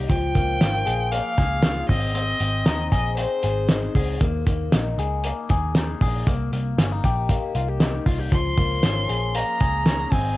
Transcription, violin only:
0, 0, Header, 1, 2, 480
1, 0, Start_track
1, 0, Tempo, 514139
1, 87, Time_signature, 4, 2, 24, 8
1, 9683, End_track
2, 0, Start_track
2, 0, Title_t, "Violin"
2, 0, Program_c, 0, 40
2, 89, Note_on_c, 0, 79, 110
2, 1041, Note_on_c, 0, 77, 103
2, 1055, Note_off_c, 0, 79, 0
2, 1758, Note_off_c, 0, 77, 0
2, 1763, Note_on_c, 0, 75, 105
2, 2688, Note_off_c, 0, 75, 0
2, 2725, Note_on_c, 0, 75, 84
2, 2949, Note_off_c, 0, 75, 0
2, 2964, Note_on_c, 0, 72, 73
2, 3649, Note_off_c, 0, 72, 0
2, 7777, Note_on_c, 0, 84, 112
2, 8737, Note_on_c, 0, 82, 106
2, 8751, Note_off_c, 0, 84, 0
2, 9451, Note_on_c, 0, 80, 98
2, 9465, Note_off_c, 0, 82, 0
2, 9683, Note_off_c, 0, 80, 0
2, 9683, End_track
0, 0, End_of_file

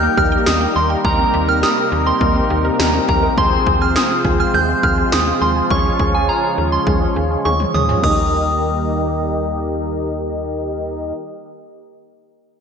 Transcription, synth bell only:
0, 0, Header, 1, 2, 480
1, 0, Start_track
1, 0, Key_signature, -3, "major"
1, 0, Tempo, 582524
1, 862, Time_signature, 4, 2, 24, 8
1, 10384, End_track
2, 0, Start_track
2, 0, Title_t, "Synth bell"
2, 0, Program_c, 0, 98
2, 145, Note_on_c, 0, 89, 75
2, 230, Note_off_c, 0, 89, 0
2, 385, Note_on_c, 0, 87, 81
2, 470, Note_off_c, 0, 87, 0
2, 625, Note_on_c, 0, 84, 75
2, 711, Note_off_c, 0, 84, 0
2, 866, Note_on_c, 0, 82, 101
2, 1038, Note_off_c, 0, 82, 0
2, 1225, Note_on_c, 0, 89, 73
2, 1311, Note_off_c, 0, 89, 0
2, 1344, Note_on_c, 0, 87, 78
2, 1430, Note_off_c, 0, 87, 0
2, 1703, Note_on_c, 0, 84, 74
2, 2041, Note_off_c, 0, 84, 0
2, 2303, Note_on_c, 0, 82, 76
2, 2390, Note_off_c, 0, 82, 0
2, 2544, Note_on_c, 0, 82, 72
2, 2630, Note_off_c, 0, 82, 0
2, 2785, Note_on_c, 0, 84, 101
2, 2957, Note_off_c, 0, 84, 0
2, 3145, Note_on_c, 0, 89, 65
2, 3231, Note_off_c, 0, 89, 0
2, 3264, Note_on_c, 0, 87, 74
2, 3350, Note_off_c, 0, 87, 0
2, 3625, Note_on_c, 0, 89, 71
2, 3711, Note_off_c, 0, 89, 0
2, 3744, Note_on_c, 0, 91, 80
2, 3917, Note_off_c, 0, 91, 0
2, 3982, Note_on_c, 0, 89, 75
2, 4069, Note_off_c, 0, 89, 0
2, 4224, Note_on_c, 0, 87, 81
2, 4310, Note_off_c, 0, 87, 0
2, 4462, Note_on_c, 0, 84, 76
2, 4548, Note_off_c, 0, 84, 0
2, 4705, Note_on_c, 0, 85, 98
2, 4877, Note_off_c, 0, 85, 0
2, 5064, Note_on_c, 0, 80, 71
2, 5150, Note_off_c, 0, 80, 0
2, 5182, Note_on_c, 0, 82, 76
2, 5269, Note_off_c, 0, 82, 0
2, 5540, Note_on_c, 0, 84, 68
2, 5879, Note_off_c, 0, 84, 0
2, 6140, Note_on_c, 0, 85, 71
2, 6227, Note_off_c, 0, 85, 0
2, 6381, Note_on_c, 0, 87, 71
2, 6468, Note_off_c, 0, 87, 0
2, 6621, Note_on_c, 0, 87, 79
2, 8029, Note_off_c, 0, 87, 0
2, 10384, End_track
0, 0, End_of_file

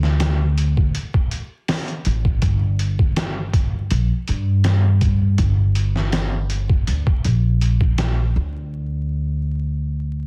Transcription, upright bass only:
0, 0, Header, 1, 2, 480
1, 0, Start_track
1, 0, Key_signature, -2, "minor"
1, 0, Tempo, 740741
1, 1573, Time_signature, 4, 2, 24, 8
1, 6654, End_track
2, 0, Start_track
2, 0, Title_t, "Upright bass"
2, 0, Program_c, 0, 32
2, 0, Note_on_c, 0, 38, 89
2, 592, Note_off_c, 0, 38, 0
2, 1337, Note_on_c, 0, 33, 78
2, 1548, Note_off_c, 0, 33, 0
2, 1573, Note_on_c, 0, 31, 92
2, 2512, Note_off_c, 0, 31, 0
2, 2535, Note_on_c, 0, 34, 92
2, 2647, Note_off_c, 0, 34, 0
2, 2778, Note_on_c, 0, 43, 86
2, 3474, Note_off_c, 0, 43, 0
2, 3491, Note_on_c, 0, 31, 95
2, 4431, Note_off_c, 0, 31, 0
2, 4454, Note_on_c, 0, 38, 79
2, 4567, Note_off_c, 0, 38, 0
2, 4697, Note_on_c, 0, 34, 81
2, 5394, Note_off_c, 0, 34, 0
2, 5417, Note_on_c, 0, 38, 73
2, 6654, Note_off_c, 0, 38, 0
2, 6654, End_track
0, 0, End_of_file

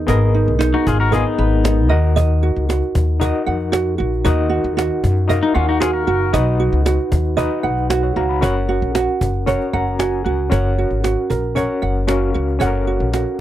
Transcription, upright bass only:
0, 0, Header, 1, 2, 480
1, 0, Start_track
1, 0, Key_signature, 6, "major"
1, 0, Tempo, 521739
1, 72, Time_signature, 4, 2, 24, 8
1, 12332, End_track
2, 0, Start_track
2, 0, Title_t, "Upright bass"
2, 0, Program_c, 0, 32
2, 77, Note_on_c, 0, 32, 113
2, 406, Note_off_c, 0, 32, 0
2, 441, Note_on_c, 0, 35, 86
2, 658, Note_off_c, 0, 35, 0
2, 799, Note_on_c, 0, 32, 90
2, 1127, Note_off_c, 0, 32, 0
2, 1276, Note_on_c, 0, 32, 93
2, 1758, Note_off_c, 0, 32, 0
2, 1758, Note_on_c, 0, 39, 101
2, 2319, Note_off_c, 0, 39, 0
2, 2359, Note_on_c, 0, 37, 84
2, 2577, Note_off_c, 0, 37, 0
2, 2717, Note_on_c, 0, 39, 81
2, 3046, Note_off_c, 0, 39, 0
2, 3199, Note_on_c, 0, 41, 86
2, 3639, Note_off_c, 0, 41, 0
2, 3680, Note_on_c, 0, 34, 95
2, 3898, Note_off_c, 0, 34, 0
2, 3917, Note_on_c, 0, 39, 105
2, 4246, Note_off_c, 0, 39, 0
2, 4272, Note_on_c, 0, 39, 87
2, 4494, Note_off_c, 0, 39, 0
2, 4635, Note_on_c, 0, 42, 92
2, 4965, Note_off_c, 0, 42, 0
2, 5113, Note_on_c, 0, 39, 89
2, 5556, Note_off_c, 0, 39, 0
2, 5590, Note_on_c, 0, 30, 100
2, 5812, Note_off_c, 0, 30, 0
2, 5831, Note_on_c, 0, 35, 126
2, 6163, Note_off_c, 0, 35, 0
2, 6188, Note_on_c, 0, 37, 87
2, 6411, Note_off_c, 0, 37, 0
2, 6552, Note_on_c, 0, 39, 83
2, 6884, Note_off_c, 0, 39, 0
2, 7030, Note_on_c, 0, 35, 88
2, 7475, Note_off_c, 0, 35, 0
2, 7508, Note_on_c, 0, 37, 87
2, 7732, Note_off_c, 0, 37, 0
2, 7756, Note_on_c, 0, 30, 93
2, 8086, Note_off_c, 0, 30, 0
2, 8116, Note_on_c, 0, 34, 84
2, 8336, Note_off_c, 0, 34, 0
2, 8474, Note_on_c, 0, 30, 84
2, 8805, Note_off_c, 0, 30, 0
2, 8957, Note_on_c, 0, 30, 89
2, 9399, Note_off_c, 0, 30, 0
2, 9436, Note_on_c, 0, 37, 91
2, 9656, Note_off_c, 0, 37, 0
2, 9678, Note_on_c, 0, 30, 106
2, 10008, Note_off_c, 0, 30, 0
2, 10034, Note_on_c, 0, 32, 71
2, 10255, Note_off_c, 0, 32, 0
2, 10402, Note_on_c, 0, 34, 76
2, 10730, Note_off_c, 0, 34, 0
2, 10880, Note_on_c, 0, 30, 83
2, 11321, Note_off_c, 0, 30, 0
2, 11365, Note_on_c, 0, 37, 85
2, 11581, Note_off_c, 0, 37, 0
2, 11601, Note_on_c, 0, 30, 99
2, 11930, Note_off_c, 0, 30, 0
2, 11963, Note_on_c, 0, 34, 80
2, 12180, Note_off_c, 0, 34, 0
2, 12332, End_track
0, 0, End_of_file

